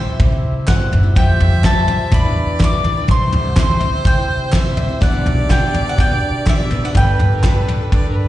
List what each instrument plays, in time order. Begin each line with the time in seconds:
Already playing: harmonium C3 C4 E4 G4, steel-string acoustic guitar G3 C4 E4 C5, fiddle C5, mandolin E5
0.20 upright bass C3, kick, floor tom
0.30 steel-string acoustic guitar G3 C4 E4 C5
0.67 upright bass G1, steel-string acoustic guitar C3 E3 G3 C4 E4 C5, mandolin F#5, kick, snare, clap
0.79 steel-string acoustic guitar G3 C4 E4 C5
0.91 upright bass F#1, steel-string acoustic guitar G3 C4 E4 C5, floor tom
1.03 steel-string acoustic guitar G3 C4 E4 C5
1.15 upright bass F2, harmonium F3 F4 C5, steel-string acoustic guitar F3 G3 C4 G4 C5, fiddle E5, mandolin G5, kick, floor tom
1.40 upright bass F2, floor tom
1.51 steel-string acoustic guitar C4 G4 C5
1.64 steel-string acoustic guitar F3 G3 C4 G4 C5, mandolin A5, kick, snare, clap
1.88 steel-string acoustic guitar G3 C4 G4 C5, floor tom
2.00 steel-string acoustic guitar C4 G4 C5
2.12 upright bass E2, steel-string acoustic guitar E3 G3 D4 E4 B4, harmonium E3 E4 G4 D5, fiddle D5, mandolin B5, kick, floor tom
2.23 steel-string acoustic guitar D4 E4 B4
2.59 steel-string acoustic guitar E3 G3 D4 E4 B4, kick, snare, clap
2.64 mandolin D6
2.73 steel-string acoustic guitar D4 E4 B4
2.84 steel-string acoustic guitar G3 D4 E4 B4, floor tom
2.97 steel-string acoustic guitar D4 E4 B4
3.07 upright bass C2, steel-string acoustic guitar C3 E3 G3 C4 E4 C5, harmonium C3 C4, fiddle C5, mandolin C6, kick, floor tom
3.32 upright bass C2, floor tom
3.44 steel-string acoustic guitar G3 C4 E4 C5
3.56 steel-string acoustic guitar C3 E3 G3 C4 E4 C5, mandolin C6, kick, snare, clap
3.81 steel-string acoustic guitar G3 C4 E4 C5, floor tom
3.93 steel-string acoustic guitar G3 C4 E4 C5
4.05 upright bass C3, mandolin G5, kick, floor tom
4.18 steel-string acoustic guitar G3 C4 E4 C5
4.52 steel-string acoustic guitar C3 E3 G3 C4 E4 C5, mandolin E5, kick, snare, clap
4.64 steel-string acoustic guitar G3 C4 E4 C5
4.76 steel-string acoustic guitar G3 C4 E4 C5, floor tom
4.88 steel-string acoustic guitar G3 C4 E4 C5
5.00 upright bass B1, steel-string acoustic guitar B2 E3 B3 D4 G4 B4, harmonium D4 E4, fiddle D5, mandolin F#5, kick, floor tom
5.26 upright bass B1, floor tom
5.38 steel-string acoustic guitar B3 D4 G4 B4
5.49 steel-string acoustic guitar B2 E3 B3 D4 G4 B4, mandolin G5, kick, snare, clap
5.74 steel-string acoustic guitar B3 D4 G4 B4, floor tom
5.89 mandolin F#5
5.98 upright bass B2, mandolin G5, kick, floor tom
6.11 steel-string acoustic guitar B3 D4 G4 B4
6.46 steel-string acoustic guitar B2 E3 B3 D4 G4 B4, mandolin E5, kick, snare, clap
6.58 steel-string acoustic guitar B3 D4 G4 B4
6.71 steel-string acoustic guitar B3 D4 G4 B4, floor tom
6.84 steel-string acoustic guitar B3 D4 G4 B4, mandolin F#5
6.95 upright bass G1, harmonium G3 A4 B4, steel-string acoustic guitar G3 D4 A4 B4, fiddle B4, mandolin G5, kick, floor tom
7.19 upright bass G1, floor tom
7.32 steel-string acoustic guitar D4 A4 B4
7.37 fiddle A#4
7.44 steel-string acoustic guitar G3 D4 A4 B4, fiddle B4, kick, snare, clap
7.68 steel-string acoustic guitar G3 D4 A4 B4, floor tom
7.81 steel-string acoustic guitar D4 A4 B4
7.91 upright bass G2, fiddle D5, kick, floor tom
8.05 steel-string acoustic guitar D4 A4 B4
8.11 fiddle A#4
8.15 fiddle B4